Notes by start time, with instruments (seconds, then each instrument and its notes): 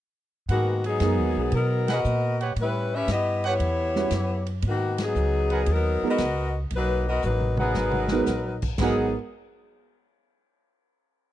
0.49 upright bass G#2, saxophone section D#3 A#3 B3 F#4, trumpet section G#4 A#4 B4 F#5, kick, ride
0.84 saxophone section F#3 B3 D#4 G#4, ride
1.00 upright bass F#2, grand piano G#3 B3 D#4 F#4 A#4, kick, snare, hi-hat pedal, ride
1.19 upright bass D#2
1.36 upright bass B1
1.52 upright bass B2, saxophone section B3 A#4, kick, ride
1.56 saxophone section F#3 D#4
1.88 saxophone section B3 A#4 D#5, trumpet section G#4 A#4 B4 F#5, snare, ride
1.92 saxophone section F#4
2.04 upright bass A#2, hi-hat pedal
2.40 trumpet section G4 B4 C#5 F#5, ride
2.56 upright bass A2, kick, ride
2.62 saxophone section G3 C#4 E4 B4
2.96 saxophone section C#4 G4 B4 E5
3.08 upright bass G2, kick, snare, hi-hat pedal, ride
3.12 saxophone section B3 E4 G4 D#5
3.43 trumpet section G4 B4 C#5 F#5, ride
3.48 saxophone section B3 E4 G4 C#5
3.60 upright bass E2, kick, ride
3.95 grand piano G3 C#4 E4 F#4 B4, snare
4.11 upright bass F#2, kick, snare, hi-hat pedal, ride
4.47 ride
4.62 upright bass G#2, kick, ride
4.67 saxophone section D#3 A#3 B3 F#4
4.98 snare, ride
5.03 saxophone section F#3 B3 D#4 G#4
5.15 upright bass C#2, hi-hat pedal
5.50 trumpet section G#4 A#4 B4 F#5, ride
5.66 upright bass D#2, kick, ride
5.73 saxophone section F#3 B3 D#4 A#4
6.03 grand piano G#3 B3 D#4 F#4 A#4, muted upright bass stroke
6.10 saxophone section B3 F#4 A#4 D#5
6.18 upright bass C#2, kick, snare, hi-hat pedal, ride
6.70 upright bass B1, kick, ride
6.77 saxophone section F#3 A#3 D#4 B4
7.09 saxophone section B3 F#4 A#4 D#5
7.22 upright bass A1, saxophone section F#3 D#4 B4, hi-hat pedal
7.26 saxophone section A#3
7.40 mid tom
7.57 saxophone section F#3 D#4 A#4 B4, trumpet section B3 G#4 F#5 A#5, mid tom
7.74 upright bass G#1, snare
7.91 mid tom
8.08 grand piano B3 D#4, snare
8.12 grand piano G#3 F#4 A#4
8.26 upright bass A#1, snare, hi-hat pedal
8.62 kick, crash
8.78 upright bass G#1, saxophone section F#3 G#4, grand piano G#3 B3 D#4 F#4 A#4, trumpet section G#4 A#4 B4 F#5, kick, snare, crash
8.82 saxophone section B3 D#4